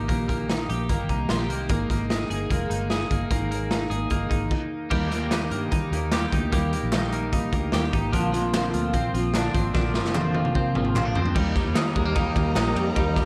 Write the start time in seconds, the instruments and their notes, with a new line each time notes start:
Already playing: clean electric guitar D#4 G4
0.09 fingered electric bass A#1, steel-string acoustic guitar A#2 D#3 A#3 D#4 G4, kick, closed hi-hat
0.28 clean electric guitar A#3, kick, closed hi-hat
0.49 steel-string acoustic guitar D#3 A#3 D#4 G4, snare, closed hi-hat
0.69 fingered electric bass A#1, steel-string acoustic guitar A#3 D#4 G4, closed hi-hat
0.89 fingered electric bass G1, steel-string acoustic guitar A#2 D#3 A#3 D#4 G4, kick, closed hi-hat
1.09 fingered electric bass C2, clean electric guitar D#4, kick, closed hi-hat
1.29 fingered electric bass A#1, steel-string acoustic guitar D#3 A#3 D#4, clean electric guitar F4, snare, closed hi-hat
1.33 steel-string acoustic guitar G4
1.39 clean electric guitar G4
1.50 fingered electric bass C2, clean electric guitar A#3, closed hi-hat
1.69 fingered electric bass G#1, steel-string acoustic guitar G#3 A#3 D#4 G#4, kick, closed hi-hat
1.89 fingered electric bass G#1, clean electric guitar A#3, kick, snare, closed hi-hat
2.09 steel-string acoustic guitar G#3 A#3 D#4 G#4, snare, closed hi-hat
2.30 fingered electric bass G1, steel-string acoustic guitar A#3 D#4 G#4, closed hi-hat
2.50 fingered electric bass F1, steel-string acoustic guitar G#3 A#3 D#4 G#4, kick, closed hi-hat
2.70 fingered electric bass G1, clean electric guitar D#4, closed hi-hat
2.90 steel-string acoustic guitar G#3 A#3 D#4 G#4, snare, closed hi-hat
3.10 fingered electric bass G1, steel-string acoustic guitar A#3 D#4 G#4, kick, closed hi-hat
3.31 fingered electric bass G#1, steel-string acoustic guitar G#3 A#3 D#4 G#4, kick, closed hi-hat
3.51 clean electric guitar A#3, closed hi-hat
3.70 steel-string acoustic guitar G#3 A#3 D#4 G#4, snare, closed hi-hat
3.90 fingered electric bass G#1, steel-string acoustic guitar A#3 D#4 G#4, closed hi-hat
4.10 fingered electric bass G1, steel-string acoustic guitar G#3 A#3 D#4 G#4, kick, closed hi-hat
4.30 fingered electric bass G#1, clean electric guitar D#4, kick, closed hi-hat
4.51 kick, crash
4.91 fingered electric bass D#2, steel-string acoustic guitar D#3 G3 A#3 D#4 G4, kick, crash
5.10 steel-string acoustic guitar A#3 D#4 G4, snare, closed hi-hat
5.31 steel-string acoustic guitar D#3 G3 A#3 D#4 G4, snare, clap, closed hi-hat
5.51 fingered electric bass G2, clean electric guitar A#3, closed hi-hat
5.72 fingered electric bass D#3, steel-string acoustic guitar G3 A#3 D#4 G4, kick, closed hi-hat
5.91 fingered electric bass D#2, steel-string acoustic guitar D#4 G4, closed hi-hat
5.96 steel-string acoustic guitar A#3
6.12 steel-string acoustic guitar D#3 G3 A#3 D#4 G4, snare, clap, closed hi-hat
6.32 fingered electric bass D2, steel-string acoustic guitar A#3 D#4 G4, kick, closed hi-hat
6.52 fingered electric bass D#2, steel-string acoustic guitar D#3 G3 A#3 D#4 G4, kick, closed hi-hat
6.72 steel-string acoustic guitar A#3 D#4 G4, closed hi-hat
6.82 fingered electric bass A#1
6.92 steel-string acoustic guitar D#3 G3 A#3 D#4 G4, snare, clap, closed hi-hat
7.12 clean electric guitar A#3, closed hi-hat
7.32 steel-string acoustic guitar G3 A#3 D#4 G4, kick, closed hi-hat
7.53 fingered electric bass D2, steel-string acoustic guitar A#3 D#4 G4, kick, closed hi-hat
7.72 fingered electric bass D#2, steel-string acoustic guitar D#3 G3 A#3 D#4 G4, snare, clap, closed hi-hat
7.93 fingered electric bass G#1, steel-string acoustic guitar A#3 D#4 G4, kick, closed hi-hat
8.13 fingered electric bass A#1, steel-string acoustic guitar A#2 D3 F3 A#3 C4 F4, clean electric guitar D4, kick, closed hi-hat
8.33 steel-string acoustic guitar F3 A#3 C4 F4, snare, closed hi-hat
8.54 steel-string acoustic guitar A#2 D3 F3 A#3 C4 F4, snare, clap, closed hi-hat
8.73 fingered electric bass D2, clean electric guitar F3, closed hi-hat
8.94 fingered electric bass A#2, steel-string acoustic guitar F3 A#3 C4 F4, kick, closed hi-hat
9.13 fingered electric bass A#1, steel-string acoustic guitar A#3 C4 F4, closed hi-hat
9.17 steel-string acoustic guitar F3
9.34 steel-string acoustic guitar A#2 D3 F3 A#3 C4 F4, clean electric guitar D4, snare, clap, closed hi-hat
9.54 fingered electric bass G#1, steel-string acoustic guitar F3 A#3 C4 F4, kick, closed hi-hat
9.74 fingered electric bass A#1, steel-string acoustic guitar A#2 D3 F3 A#3 C4 F4, clean electric guitar D4, kick, snare
9.94 clean electric guitar F3, steel-string acoustic guitar C4 F4, snare
9.98 steel-string acoustic guitar F3 A#3
10.04 fingered electric bass F1, snare
10.15 steel-string acoustic guitar A#2 D3 F3 A#3 C4 F4, clap, high tom
10.34 clean electric guitar F3, high tom
10.45 mid tom
10.55 steel-string acoustic guitar F3 A#3 C4 F4, kick, mid tom
10.75 fingered electric bass G#1, steel-string acoustic guitar A#3 C4 F4, mid tom
10.79 steel-string acoustic guitar F3
10.85 mid tom
10.94 fingered electric bass A#1, steel-string acoustic guitar A#2 D3 F3 A#3 C4 F4, clap, mid tom
11.05 clean electric guitar D4
11.15 fingered electric bass D2, steel-string acoustic guitar F3 A#3 C4 F4, floor tom
11.26 floor tom
11.35 fingered electric bass D#2, steel-string acoustic guitar D#3 G3 A#3 D#4 G4, string section G4 A#4 D#5 A#5, kick, crash
11.55 clean electric guitar G3, steel-string acoustic guitar D#4 G4, kick, snare, ride
11.59 steel-string acoustic guitar A#3
11.65 fingered electric bass D#2
11.74 fingered electric bass D#3, steel-string acoustic guitar G3 A#3, clean electric guitar D#4, snare, clap, ride
11.79 steel-string acoustic guitar D#4 G4
11.95 fingered electric bass D#2, clean electric guitar G#3, kick, ride
12.05 clean electric guitar A#3
12.15 steel-string acoustic guitar D#3 G3 A#3 D#4 G4, kick, ride
12.36 fingered electric bass D#2, clean electric guitar A#3, kick, ride
12.55 fingered electric bass A#1, steel-string acoustic guitar G3 A#3 D#4 G4, snare, clap, ride
12.74 fingered electric bass F2, clean electric guitar G3, steel-string acoustic guitar D#4 G4, ride
12.80 steel-string acoustic guitar A#3
12.96 fingered electric bass D#2, steel-string acoustic guitar D#3 G3 A#3 D#4 G4, kick, ride
13.16 clean electric guitar G3, steel-string acoustic guitar D#4 G4, kick, snare, ride
13.21 steel-string acoustic guitar A#3